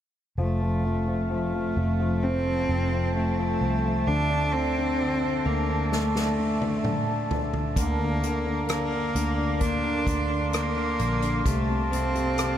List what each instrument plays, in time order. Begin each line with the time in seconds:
0.38 fingered electric bass F1, grand piano F3, cello A3, brass ensemble C4 A4 F5 A5
0.62 grand piano F3
0.84 grand piano F3
1.07 grand piano F3
1.30 grand piano F3, cello A3
1.54 grand piano F3
1.76 fingered electric bass F1, grand piano F3
2.00 grand piano F3
2.23 cello C4, grand piano C4, brass ensemble G5
2.46 grand piano F3
2.69 fingered electric bass F1, grand piano F3
2.92 grand piano F3
3.15 grand piano F3, cello A3
3.38 grand piano F3
3.61 fingered electric bass C2, grand piano F3
3.84 grand piano F3
4.07 fingered electric bass D2, grand piano D3, cello D4, brass ensemble D4 E5
4.30 grand piano D3
4.53 grand piano D3, cello C4
4.77 grand piano D3
5.00 grand piano D3
5.23 grand piano D3
5.46 fingered electric bass D2, grand piano D3, cello A#3
5.70 grand piano D3
5.92 grand piano A3, cello A3, snare
6.15 grand piano D3, snare
6.38 grand piano D3
6.61 grand piano D3, high tom
6.84 grand piano D3, mid tom
7.07 grand piano D3
7.30 grand piano D3, floor tom
7.54 grand piano D3, floor tom
7.76 fingered electric bass D2, grand piano D3, cello A#3, brass ensemble A#4 F5 A#5, kick, closed hi-hat
7.99 grand piano D3
8.23 grand piano D3, closed hi-hat
8.46 grand piano D3
8.68 grand piano D3, cello A#3, cross-stick, closed hi-hat
8.92 grand piano D3
9.15 fingered electric bass D2, grand piano D3, closed hi-hat
9.38 grand piano D3
9.60 grand piano A#3, cello D4, brass ensemble C6, kick, closed hi-hat
9.83 grand piano D3
10.07 fingered electric bass D2, grand piano D3, kick, closed hi-hat
10.30 grand piano D3
10.53 grand piano D3, cello A#3, cross-stick, closed hi-hat
10.76 grand piano D3
10.99 fingered electric bass A#1, grand piano D3, closed hi-hat
11.22 grand piano D3, closed hi-hat
11.45 fingered electric bass C2, grand piano C3, cello A3, brass ensemble C4 A4 F5 A5, kick, closed hi-hat
11.69 grand piano C3
11.90 grand piano C3, cello C4, closed hi-hat
12.15 grand piano C3, closed hi-hat
12.38 grand piano C3, cross-stick, closed hi-hat